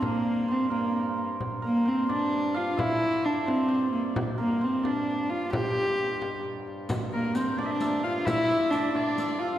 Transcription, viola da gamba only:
X:1
M:6/8
L:1/8
Q:3/8=88
K:Gdor
V:1 name="Viola da gamba"
B,2 C B,2 z | z B, C D2 F | E2 D C2 B, | z B, C D2 F |
G4 z2 | z B, C D2 F | E2 D D2 F |]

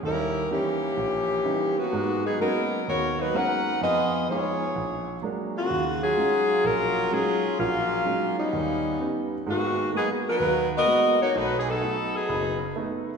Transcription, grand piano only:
X:1
M:4/4
L:1/8
Q:"Swing" 1/4=127
K:Ebm
V:1 name="Grand piano" clef=bass
E,,2 [_F,=G,DE] z B,,,2 [F,G,DE] z | [A,,A,]2 [G,A,B,CD] z E,,2 [G,A,B,CD] z | F,,2 [F,A,E] z B,,,2 [^F,A,B,=D] z | E,,2 [G,A,DEF] z [B,,,B,,]2 [G,A,DEF] z |
[B,,,B,,]2 [G,A,DEF] z E,,2 [=G,=B,DE] z | [K:G#m] [G,,G,]2 [G,A,B,F] z D,,2 [G,A,B,F] z | B,,,2 [=A,B,D] z F,,,2 [A,B,D] z |]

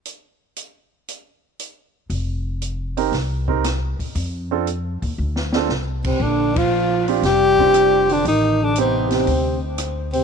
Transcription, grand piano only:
X:1
M:4/4
L:1/8
Q:"Swing" 1/4=117
K:Bb
V:1 name="Grand piano"
z8 | z3 [CEGB] z [CEGB] z2 | z [CDFA] z3 [CDFA] z2 | z3 [CDFG] z [CDFG]3 |
z2 [_C=CEG]2 z4 |]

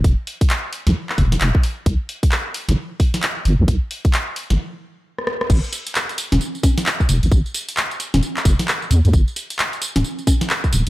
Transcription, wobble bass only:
X:1
M:4/4
L:1/16
Q:"Swing 16ths" 1/4=132
K:Ador
V:1 name="Wobble bass" clef=bass
E,,, z6 B,,, z2 E,,, z E,,, z3 | C,, z6 G,,, z6 G,,, C,, | C,, z6 G,,, z8 | A,,, z6 E,,, z6 E,,, A,,, |
A,,, z6 E,,, z2 F,,, z3 E,, E,, | G,,, z6 D,,, z6 D,,, z |]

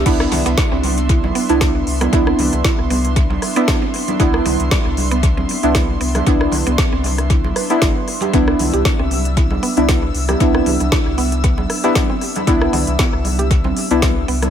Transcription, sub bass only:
X:1
M:4/4
L:1/16
Q:"Swing 16ths" 1/4=116
K:C
V:1 name="Sub bass" clef=bass
C,,2 C,, C,, z C,,4- C,, z C,,3 C,,2 | C,,2 C,, C,, z C,,4- C,, z6 | C,,2 C,, C,, z C,,4- C,, z C,,3 C,,2 | C,,2 C,, C,, z C,,4- C,, z2 G,,, z3 |
C,,2 C,, C,, z C,,4- C,, z C,,3 C,,2 | C,,2 C,, C,, z C,,4- C,, z6 | C,,2 C,, C,, z C,,4- C,, z C,,3 C,,2 |]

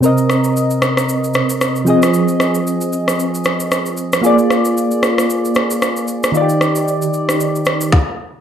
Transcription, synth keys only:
X:1
M:4/4
L:1/8
Q:"Swing 16ths" 1/4=114
K:Cm
V:1 name="Synth keys"
[C,CBe]6- [C,CBe] [F,CAe]- | [F,CAe]6- [F,CAe] z | [B,FAd]8 | [E,EFGd]6 z2 |]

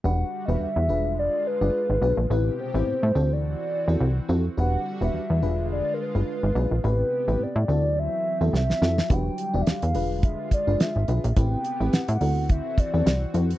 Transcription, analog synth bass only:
X:1
M:4/4
L:1/16
Q:"Swing 16ths" 1/4=106
K:Em
V:1 name="Analog synth bass" clef=bass
E,,,2 z E,,, E,, E,, E,,,4 z G,,, z ^G,,, B,,, ^A,,, | A,,,2 z A,,, A,, A,, D,,4 z E,, C,,2 =F,,2 | E,,,2 z E,,, E,, E,, E,,,4 z G,,, z ^G,,, B,,, ^A,,, | A,,,2 z A,,, A,, A,, D,,4 z E,, C,,2 =F,,2 |
E,,,2 z E,,, E,, E,, E,,,4 z G,,, z ^G,,, B,,, ^A,,, | A,,,2 z A,,, A,, A,, D,,4 z E,, C,,2 =F,,2 |]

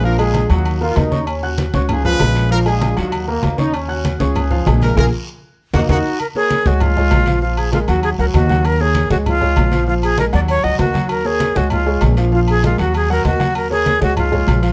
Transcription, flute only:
X:1
M:4/4
L:1/8
Q:1/4=195
K:Ebm
V:1 name="Flute"
z8 | z8 | z8 | z8 |
z6 G2 | B A2 G F4 | F A F G A B G2 | B A2 G F4 |
F A B =d _d e G2 | B A2 G F2 z2 | F A F G A B G2 | B A2 G F4 |]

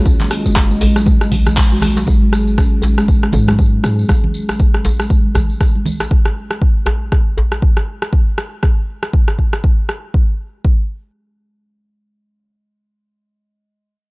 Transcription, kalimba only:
X:1
M:4/4
L:1/16
Q:"Swing 16ths" 1/4=119
K:F#
V:1 name="Kalimba" clef=bass
C z D, G, z G, z F, G, z G, D, z F G, F, | G, z G z C z D, G, z G, z F, G, z G z | z16 | z16 |
z16 | z16 | z16 |]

